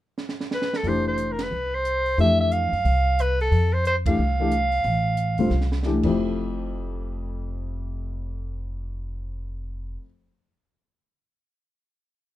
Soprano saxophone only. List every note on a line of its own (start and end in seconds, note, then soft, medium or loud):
0.54 0.78 B4 medium
0.76 0.89 A4 medium
0.88 1.07 C5 medium
1.08 1.33 C5 medium
1.32 1.44 A#4 medium
1.42 1.76 B4 medium
1.75 2.19 C5 medium
2.20 2.39 E5 loud
2.40 2.53 E5 medium
2.52 3.22 F5 loud
3.21 3.40 B4 medium
3.41 3.75 A4 medium
3.73 3.85 C5 medium
3.87 3.96 C5 medium
4.07 5.80 F5 medium